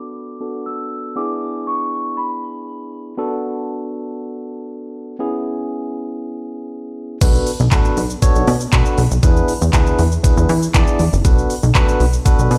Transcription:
Already playing: tine electric piano B3 D4 F#4 A4, celesta D6
0.41 tine electric piano B3 D4 F#4 A4
0.66 celesta E6
1.16 tine electric piano B3 D4 E4 G#4, celesta D6
1.67 celesta C#6
2.17 celesta B5
3.17 tine electric piano B3 D4 F#4 A4
5.19 tine electric piano B3 C#4 E4 G#4
7.21 analog synth bass B1, tine electric piano B3 D4 F#4 A4 B4, kick, closed hi-hat, crash, shaker
7.35 shaker
7.47 open hi-hat, shaker
7.60 analog synth bass B1, shaker
7.71 analog synth bass A1, tine electric piano B3 D4 F#4 A4 B4, kick, clap, closed hi-hat, shaker
7.85 shaker
7.97 analog synth bass B1, open hi-hat, shaker
8.10 shaker
8.22 tine electric piano B3 D4 F#4 A4 C#5, kick, closed hi-hat, shaker
8.35 analog synth bass B1, shaker
8.47 analog synth bass B2, open hi-hat, shaker
8.61 shaker
8.72 analog synth bass B2, tine electric piano B3 D4 F#4 A4 B4, kick, clap, closed hi-hat, shaker
8.86 shaker
8.98 analog synth bass B1, open hi-hat, shaker
9.11 analog synth bass B1, shaker
9.23 analog synth bass E2, tine electric piano B3 D4 E4 G#4 B4, kick, closed hi-hat, shaker
9.37 shaker
9.48 open hi-hat, shaker
9.61 analog synth bass E2, shaker
9.73 analog synth bass D2, tine electric piano B3 D4 E4 G#4 B4, kick, clap, closed hi-hat, shaker
9.87 shaker
9.99 analog synth bass E2, open hi-hat, shaker
10.12 shaker
10.23 tine electric piano B3 D4 E4 G#4 B4, kick, closed hi-hat, shaker
10.37 analog synth bass E2, shaker
10.49 analog synth bass E3, open hi-hat, shaker
10.62 shaker
10.74 analog synth bass E3, tine electric piano B3 D4 E4 G#4 D5, kick, clap, closed hi-hat, shaker
10.87 shaker
10.99 analog synth bass E2, open hi-hat, shaker
11.13 analog synth bass F#1, shaker
11.25 analog synth bass B1, tine electric piano B3 D4 F#4 A4 B4, kick, closed hi-hat, shaker
11.38 shaker
11.50 open hi-hat, shaker
11.63 analog synth bass B1, shaker
11.75 tine electric piano B3 D4 F#4 A4 B4, kick, clap, closed hi-hat, shaker
11.88 shaker
12.00 analog synth bass B1, open hi-hat, shaker
12.13 shaker
12.25 tine electric piano B3 D4 F#4 A4 B4, kick, closed hi-hat, shaker
12.39 analog synth bass B1, shaker
12.51 analog synth bass B2, open hi-hat, shaker

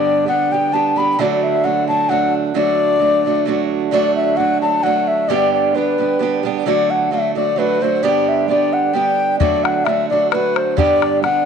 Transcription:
Already playing: steel-string acoustic guitar G2 D3 G3 B3 D4 G4, flute D5
0.26 steel-string acoustic guitar G3 B3 D4 G4, flute F#5
0.51 steel-string acoustic guitar G3 B3 D4 G4, flute G5
0.72 steel-string acoustic guitar G3 B3 D4 G4, flute A5
0.96 steel-string acoustic guitar G3 B3 D4 G4, flute B5
1.19 steel-string acoustic guitar D3 F#3 A3 D4 F#4, flute D5
1.43 flute E5
1.64 steel-string acoustic guitar F#3 A3 D4 F#4, flute F#5
1.87 steel-string acoustic guitar F#3 A3 D4 F#4, flute A5
2.09 steel-string acoustic guitar F#3 A3 D4 F#4, flute F#5
2.54 steel-string acoustic guitar D3 F#3 A3 D4 F#4, flute D5
3.00 steel-string acoustic guitar F#3 A3 D4 F#4
3.24 steel-string acoustic guitar F#3 A3 D4 F#4
3.46 steel-string acoustic guitar F#3 A3 D4 F#4
3.91 steel-string acoustic guitar D3 F#3 A3 D4 F#4, flute D5
4.16 flute E5
4.37 steel-string acoustic guitar F#3 A3 D4 F#4, flute F#5
4.61 steel-string acoustic guitar F#3 A3 D4 F#4, flute A5
4.83 steel-string acoustic guitar F#3 A3 D4 F#4, flute F#5
5.08 flute E5
5.29 steel-string acoustic guitar G2 D3 G3 B3 D4 G4, flute D5
5.54 flute D5
5.74 steel-string acoustic guitar G3 B3 D4 G4, flute B4
5.98 steel-string acoustic guitar G3 B3 D4 G4
6.19 steel-string acoustic guitar G3 B3 D4 G4
6.43 steel-string acoustic guitar G3 B3 D4 G4
6.66 steel-string acoustic guitar D3 F#3 A3 D4 F#4, flute D5
6.90 flute F#5
7.11 steel-string acoustic guitar F#3 A3 D4 F#4, flute E5
7.35 steel-string acoustic guitar F#3 A3 D4 F#4, flute D5
7.56 steel-string acoustic guitar F#3 A3 D4 F#4, flute B4
7.81 steel-string acoustic guitar F#3 A3 D4 F#4, flute C5
8.03 steel-string acoustic guitar G2 D3 G3 B3 D4 G4, flute D5
8.28 flute E5
8.48 steel-string acoustic guitar G3 B3 D4 G4, flute D5
8.73 flute F#5
8.93 steel-string acoustic guitar G3 B3 D4 G4, flute G5
9.39 steel-string acoustic guitar D3 F#3 A3 D4 F#4, flute D5, bodhran
9.64 flute F#5, bodhran
9.85 steel-string acoustic guitar F#3 A3 D4, flute E5, bodhran
9.89 steel-string acoustic guitar F#4
10.09 steel-string acoustic guitar F#3 A3 D4 F#4, flute D5
10.31 steel-string acoustic guitar F#3 A3 D4 F#4, flute B4, bodhran
10.56 flute C5, bodhran
10.77 steel-string acoustic guitar G2 D3 G3 B3 D4 G4, flute D5, bodhran
11.02 bodhran
11.22 steel-string acoustic guitar G3 B3 D4 G4, flute F#5, bodhran

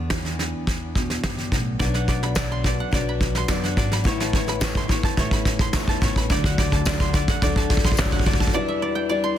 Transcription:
Already playing: upright bass E2, steel-string acoustic guitar E2 D3 B3 D4
0.10 steel-string acoustic guitar E3, kick, snare
0.14 steel-string acoustic guitar D4
0.25 snare
0.39 steel-string acoustic guitar B3, snare
0.67 upright bass E2, steel-string acoustic guitar D4, kick, snare
0.95 steel-string acoustic guitar B2 B3, kick, snare
1.10 snare
1.24 upright bass C#2, steel-string acoustic guitar G2, kick, snare
1.38 snare
1.52 upright bass B1, steel-string acoustic guitar A2, kick, snare
1.79 felt piano B1 B2 F#3 D4 B4 D5, upright bass B1, steel-string acoustic guitar B2 F#3 B3 D4 F#4, koto D5, kick, snare
1.94 koto F#5, snare
2.08 koto D5, kick, snare
2.23 koto B5, snare
2.35 felt piano F#3 D4 B4 D5, steel-string acoustic guitar D4 F#4, koto D5, kick, snare, clap, tambourine
2.52 koto C6
2.64 steel-string acoustic guitar B3 D4 F#4, koto D5, kick, snare
2.80 koto F#5
2.91 upright bass B1, steel-string acoustic guitar F#3 B3 D4 F#4, felt piano F#3 D4 B4 D5, koto D5, kick, snare
3.09 koto B5
3.21 kick, snare
3.35 koto C6, snare
3.48 upright bass F#2, steel-string acoustic guitar F#3 B3 D4 F#4, felt piano F#3 B3 D4 D5, koto D5, kick, snare, clap, tambourine
3.64 koto F#5, snare
3.77 upright bass G#1, steel-string acoustic guitar B3 D4 F#4, koto D5, kick, snare
3.92 koto B5, snare
4.04 upright bass A1, felt piano A1 A2 A3 E4 B4 C#5, steel-string acoustic guitar A2 E3 B3 C#4 E4, koto C#5, kick, snare
4.20 koto A5, snare
4.33 koto C#5, kick, snare
4.48 koto B5, snare
4.61 felt piano A3 E4 B4 C#5, steel-string acoustic guitar B3 C#4 E4, koto C#5, kick, snare, clap, tambourine
4.75 koto C6, kick
4.88 steel-string acoustic guitar B3 C#4 E4, koto C#5, kick, snare
5.03 koto A5, kick
5.16 upright bass A1, steel-string acoustic guitar E3 B3 C#4 E4, felt piano A3 E4 B4 E5, koto C#5, kick, snare
5.31 koto B5, kick
5.45 kick, snare
5.59 koto C6, kick, snare
5.73 upright bass E2, steel-string acoustic guitar E3 B3 C#4 E4, felt piano A3 B3 E4 C#5, koto C#5, kick, snare, clap, tambourine
5.88 koto A5, kick
6.01 upright bass A1, steel-string acoustic guitar B3 C#4 E4, koto C#5, kick, snare
6.16 koto B5, kick
6.30 upright bass D2, felt piano D2 D3 F#3 D4 A4 D5, steel-string acoustic guitar D3 A3 D4 F#4, koto D5, kick, snare
6.44 koto F#5, kick
6.58 koto D5, kick, snare
6.72 koto A5, kick, snare
6.85 steel-string acoustic guitar D3 A3 D4 F#4, felt piano F#3 D4 A4 D5, koto D5, kick, snare, clap, tambourine
7.00 koto C6, kick, snare
7.13 steel-string acoustic guitar A3 D4 F#4, koto D5, kick, snare
7.28 koto F#5, kick, snare
7.42 upright bass D2, steel-string acoustic guitar D3 A3 D4 F#4, felt piano F#3 D4 A4 D5, koto D5, kick, snare
7.56 koto A5, kick
7.70 kick, snare
7.77 kick
7.85 koto C6, kick, snare
7.92 kick
7.97 upright bass A1, steel-string acoustic guitar D3 A3 D4 F#4, felt piano F#3 D4 A4 C#5, koto D5, kick, snare, clap, tambourine
8.05 kick
8.12 koto F#5, kick, snare
8.19 kick
8.26 upright bass D2, steel-string acoustic guitar A3 D4 F#4, koto D5, kick, snare
8.33 kick
8.40 koto A5, kick
8.47 kick
8.53 steel-string acoustic guitar E2 B2 E3 G3 D4 E4, felt piano E2 E3 G3 E4 B4 D5, koto D5
8.68 koto E5
8.82 koto D5
8.95 koto G5
9.09 steel-string acoustic guitar E3 G3 D4 E4, felt piano G3 E4 B4 D5, koto D5
9.24 koto C6

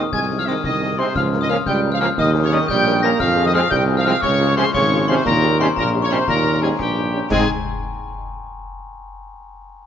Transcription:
Already playing: euphonium D#3, glockenspiel D#6
0.12 tuba C2, euphonium G#3, trumpet section G#5, glockenspiel G#6, piccolo G#6, concert bass drum, snare
0.30 french horn section C4 D#4 G#4
0.38 euphonium F3, trumpet section F5, piccolo F6, glockenspiel F6
0.46 euphonium D#3, trombone section G#3 C4, french horn section C4 D#4 G#4, trumpet section D#5, piccolo D#6, glockenspiel D#6
0.63 tuba C2, euphonium D#3, trumpet section D#5, piccolo D#6, glockenspiel D#6, concert bass drum, snare
0.81 french horn section C4 D#4 G#4
0.97 euphonium C3, trombone section G#3 C4, french horn section C4 D#4 G#4, trumpet section C5, glockenspiel C6, piccolo C6
1.14 tuba C#2, euphonium F3, trumpet section F5, glockenspiel F6, piccolo F6, concert bass drum, snare, crash
1.32 french horn section A#3 F4 A#4, snare
1.41 euphonium D#3, trumpet section D#5, glockenspiel D#6, piccolo D#6
1.49 euphonium F3, french horn section A#3 F4 A#4, trombone section A#3 C#4, trumpet section F5, glockenspiel F6, piccolo F6, snare
1.66 tuba C#2, euphonium G3, trumpet section G5, glockenspiel G6, piccolo G6, concert bass drum, snare
1.84 french horn section A#3 F4 A#4
1.92 euphonium F3, trumpet section F5, glockenspiel F6, piccolo F6
2.00 euphonium F3, trombone section A#3 C#4, french horn section A#3 F4 A#4, trumpet section F5, glockenspiel F6, piccolo F6, snare
2.17 tuba D#2, euphonium D#3, trumpet section D#5, glockenspiel D#6, piccolo D#6, concert bass drum, snare
2.34 french horn section C#4 G4 A#4
2.44 euphonium C#3, trumpet section C#5, glockenspiel C#6, piccolo C#6
2.51 euphonium D#3, trombone section G3 C#4, french horn section C#4 G4 A#4, trumpet section D#5, glockenspiel D#6, piccolo D#6
2.68 tuba A#1, euphonium G3, trumpet section G5, glockenspiel G6, piccolo G6, concert bass drum, snare
2.84 french horn section C#4 G4 A#4
3.02 trombone section G3 C#4, euphonium A#3, french horn section C#4 G4 A#4, trumpet section A#5, piccolo A#6, glockenspiel A#6
3.19 tuba F2, euphonium F3, trumpet section F5, piccolo F6, glockenspiel F6, concert bass drum, snare, crash
3.36 french horn section C4 F4 G#4, snare
3.45 euphonium D#3, trumpet section D#5, piccolo D#6, glockenspiel D#6
3.53 euphonium F3, trombone section G#3 C4, french horn section C4 F4 G#4, trumpet section F5, piccolo F6, glockenspiel F6, snare
3.70 tuba C2, euphonium G3, trumpet section G5, piccolo G6, glockenspiel G6, concert bass drum, snare
3.88 french horn section C4 F4 G#4
3.96 euphonium F3, trumpet section F5, piccolo F6, glockenspiel F6
4.05 euphonium F3, trombone section G#3 C4, french horn section C4 F4 G#4, trumpet section F5, piccolo F6, glockenspiel F6, snare
4.21 tuba C#2, euphonium C#3, trumpet section C#5, piccolo C#6, glockenspiel C#6, concert bass drum, snare
4.40 french horn section C#4 F4 G#4
4.56 euphonium C3, trombone section F3 C#4, french horn section C#4 F4 G#4, trumpet section C5, piccolo C6, glockenspiel C6
4.74 tuba G#1, euphonium C#3, trumpet section C#5, piccolo C#6, glockenspiel C#6, concert bass drum, snare
4.91 french horn section C#4 F4 G#4
5.08 euphonium C3, trombone section F3 C#4, french horn section C#4 F4 G#4, trumpet section C5, glockenspiel C6, piccolo C6
5.25 tuba D#2, euphonium A#2, trumpet section A#4, piccolo A#5, glockenspiel A#5, concert bass drum, snare, crash
5.42 french horn section C#4 D#4 G4, snare
5.59 euphonium C3, trombone section G3 C#4, french horn section C#4 D#4 G4, trumpet section C5, piccolo C6, glockenspiel C6, snare
5.76 tuba A#1, euphonium A#2, trumpet section A#4, glockenspiel A#5, piccolo A#5, concert bass drum, snare
5.93 french horn section C#4 D#4 G4
6.02 euphonium C#3, trumpet section C#5, glockenspiel C#6, piccolo C#6
6.10 euphonium C3, trombone section G3 C#4, french horn section C#4 D#4 G4, trumpet section C5, glockenspiel C6, piccolo C6, snare
6.28 tuba D#2, euphonium A#2, trumpet section A#4, glockenspiel A#5, piccolo A#5, concert bass drum, snare
6.45 french horn section C#4 D#4 G4
6.61 euphonium G#2, trombone section G3 C#4, french horn section C#4 D#4 G4, trumpet section G#4, glockenspiel G#5, piccolo G#5
6.79 tuba A#1, euphonium G2, trumpet section G4, glockenspiel G5, piccolo G5, concert bass drum, snare
6.96 french horn section C#4 D#4 G4
7.12 trombone section G3 C#4, french horn section C#4 D#4 G4
7.30 tuba G#2, trombone section G#3 C4, euphonium G#3, french horn section C4 D#4 G#4, trumpet section G#4, piccolo G#5, glockenspiel G#5, concert bass drum, snare, crash

